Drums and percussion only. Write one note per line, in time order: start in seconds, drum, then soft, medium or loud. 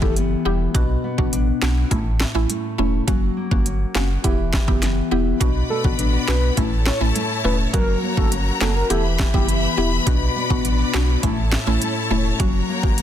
0.02 kick loud
0.16 closed hi-hat medium
0.75 kick loud
0.75 closed hi-hat medium
1.18 kick loud
1.33 closed hi-hat medium
1.62 snare loud
1.62 clap loud
1.91 kick medium
1.91 closed hi-hat medium
2.20 snare loud
2.20 clap medium
2.50 closed hi-hat medium
3.08 kick loud
3.08 closed hi-hat medium
3.51 kick loud
3.66 closed hi-hat medium
3.95 snare loud
3.95 clap loud
4.24 kick medium
4.24 closed hi-hat medium
4.53 kick medium
4.53 snare loud
4.53 clap medium
4.68 kick loud
4.68 cross-stick loud
4.83 snare medium
4.83 closed hi-hat medium
5.41 kick loud
5.41 closed hi-hat medium
5.84 kick loud
5.99 closed hi-hat medium
6.28 snare loud
6.28 clap loud
6.57 kick medium
6.57 closed hi-hat medium
6.86 snare loud
6.86 clap medium
7.16 closed hi-hat medium
7.74 kick loud
7.74 closed hi-hat medium
8.17 kick loud
8.32 closed hi-hat medium
8.61 snare loud
8.61 clap loud
8.90 closed hi-hat medium
9.19 kick medium
9.19 snare loud
9.19 clap medium
9.34 kick loud
9.49 closed hi-hat medium
10.07 kick loud
10.07 closed hi-hat medium
10.50 kick loud
10.65 closed hi-hat medium
10.94 snare loud
10.94 clap loud
11.23 kick medium
11.23 closed hi-hat medium
11.52 snare loud
11.52 clap medium
11.82 closed hi-hat medium
12.40 kick loud
12.40 closed hi-hat medium
12.83 kick loud
12.98 closed hi-hat medium